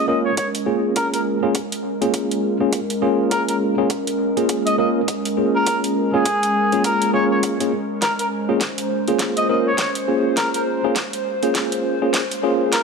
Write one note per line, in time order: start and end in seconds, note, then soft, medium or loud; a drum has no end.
0.00 12.83 G#3 medium
0.00 12.83 C#4 medium
0.00 7.98 A#4 medium
0.08 0.30 A#3 medium
0.08 0.30 C#4 medium
0.08 0.30 F4 medium
0.08 0.30 A#4 medium
0.08 0.19 D#5 medium
0.25 0.33 C#5 medium
0.37 0.48 C#5 medium
0.37 kick medium
0.37 closed hi-hat medium
0.55 closed hi-hat medium
0.66 1.39 A#3 medium
0.66 1.39 C#4 medium
0.66 1.39 F4 medium
0.66 1.39 G#4 medium
0.96 1.07 A#4 medium
0.96 kick medium
0.96 closed hi-hat medium
1.13 1.21 A#4 medium
1.13 closed hi-hat medium
1.43 1.53 A#3 medium
1.43 1.53 C#4 medium
1.43 1.53 F4 medium
1.43 1.53 G#4 medium
1.55 kick medium
1.55 closed hi-hat medium
1.72 closed hi-hat medium
2.02 2.56 A#3 medium
2.02 2.56 C#4 medium
2.02 2.56 F4 medium
2.02 2.56 G#4 medium
2.02 closed hi-hat soft
2.14 kick medium
2.14 closed hi-hat medium
2.31 closed hi-hat medium
2.60 2.79 A#3 medium
2.60 2.79 C#4 medium
2.60 2.79 F4 medium
2.60 2.79 G#4 medium
2.73 kick medium
2.73 closed hi-hat medium
2.90 closed hi-hat medium
3.02 3.74 A#3 loud
3.02 3.74 C#4 medium
3.02 3.74 F4 medium
3.02 3.74 G#4 loud
3.31 3.42 A#4 medium
3.31 kick medium
3.31 closed hi-hat medium
3.48 3.56 A#4 medium
3.48 closed hi-hat medium
3.78 3.88 A#3 medium
3.78 3.88 C#4 medium
3.78 3.88 F4 medium
3.78 3.88 G#4 medium
3.90 kick medium
3.90 closed hi-hat medium
4.07 closed hi-hat medium
4.37 4.76 A#3 medium
4.37 4.76 C#4 medium
4.37 4.76 F4 medium
4.37 4.76 G#4 medium
4.37 closed hi-hat soft
4.49 kick medium
4.49 closed hi-hat medium
4.66 4.74 D#5 medium
4.66 closed hi-hat medium
4.78 5.00 A#3 medium
4.78 5.00 C#4 medium
4.78 5.00 F4 medium
4.78 5.00 A#4 medium
4.78 4.89 D#5 medium
5.08 kick medium
5.08 closed hi-hat medium
5.25 closed hi-hat medium
5.37 6.09 A#3 medium
5.37 6.09 C#4 medium
5.37 6.09 F4 medium
5.37 6.09 G#4 medium
5.55 5.80 A#4 medium
5.67 kick medium
5.67 closed hi-hat medium
5.84 closed hi-hat soft
6.13 6.24 A#3 medium
6.13 6.24 C#4 medium
6.13 6.24 F4 medium
6.13 6.82 G#4 medium
6.13 6.24 G#4 medium
6.25 kick medium
6.25 closed hi-hat medium
6.43 closed hi-hat medium
6.72 7.12 A#3 medium
6.72 7.12 C#4 medium
6.72 7.12 F4 medium
6.72 7.12 G#4 medium
6.72 closed hi-hat soft
6.84 7.11 A#4 medium
6.84 kick medium
6.84 closed hi-hat medium
7.02 closed hi-hat soft
7.13 7.56 A#3 medium
7.13 7.56 C#4 medium
7.13 7.56 F4 medium
7.13 7.56 G#4 medium
7.13 7.25 C#5 medium
7.31 7.39 C#5 medium
7.43 kick medium
7.43 closed hi-hat medium
7.60 7.71 A#3 medium
7.60 7.71 C#4 medium
7.60 7.71 F4 medium
7.60 7.71 G#4 medium
7.60 closed hi-hat medium
8.02 8.13 A#4 medium
8.02 12.83 C5 medium
8.02 kick loud
8.02 snare soft
8.02 closed hi-hat medium
8.19 8.27 A#4 medium
8.19 closed hi-hat soft
8.49 8.59 A#3 medium
8.49 8.59 C#4 medium
8.49 8.59 F4 medium
8.49 8.59 G#4 medium
8.61 kick medium
8.61 snare soft
8.61 closed hi-hat medium
8.78 closed hi-hat medium
9.08 9.46 A#3 medium
9.08 9.46 C#4 medium
9.08 9.46 F4 medium
9.08 9.46 G#4 medium
9.08 closed hi-hat soft
9.19 kick loud
9.19 snare medium
9.19 closed hi-hat medium
9.37 9.45 D#5 medium
9.37 closed hi-hat soft
9.49 9.71 A#3 medium
9.49 9.71 C#4 medium
9.49 9.71 F4 medium
9.49 9.71 A#4 medium
9.49 9.60 D#5 medium
9.67 9.74 C#5 medium
9.78 9.90 C#5 medium
9.78 kick medium
9.78 snare medium
9.78 closed hi-hat medium
9.95 closed hi-hat soft
10.08 10.80 A#3 medium
10.08 10.80 C#4 medium
10.08 10.80 F4 medium
10.08 10.80 G#4 medium
10.37 10.48 A#4 medium
10.37 kick loud
10.37 snare medium
10.37 closed hi-hat medium
10.54 10.63 A#4 medium
10.54 closed hi-hat soft
10.84 10.95 A#3 medium
10.84 10.95 C#4 medium
10.84 10.95 F4 medium
10.84 10.95 G#4 loud
10.96 kick loud
10.96 snare medium
10.96 closed hi-hat medium
11.13 closed hi-hat soft
11.43 11.98 A#3 medium
11.43 11.98 C#4 medium
11.43 11.98 F4 medium
11.43 11.98 G#4 medium
11.43 closed hi-hat soft
11.55 kick medium
11.55 snare medium
11.55 closed hi-hat medium
11.72 closed hi-hat soft
12.02 12.20 A#3 medium
12.02 12.20 C#4 medium
12.02 12.20 F4 medium
12.02 12.20 G#4 medium
12.14 kick medium
12.14 snare medium
12.14 closed hi-hat medium
12.31 closed hi-hat soft
12.43 12.83 A#3 loud
12.43 12.83 C#4 medium
12.43 12.83 F4 medium
12.43 12.83 G#4 loud
12.72 12.83 A#4 medium
12.72 kick loud
12.72 snare medium
12.72 closed hi-hat medium